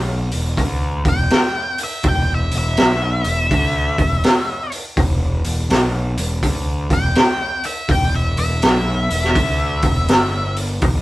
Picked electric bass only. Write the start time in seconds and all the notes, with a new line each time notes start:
Already playing: B1
0.33 E1
0.58 D2
1.05 E1
2.04 E1
2.52 E1
2.78 B1
3.25 E1
3.52 D2
3.99 E1
4.97 E1
5.45 E1
5.70 B1
6.17 E1
6.43 D2
6.90 E1
7.89 E1
8.36 E1
8.63 B1
9.10 E1
9.35 D2
9.83 E1
10.09 G1
10.82 E1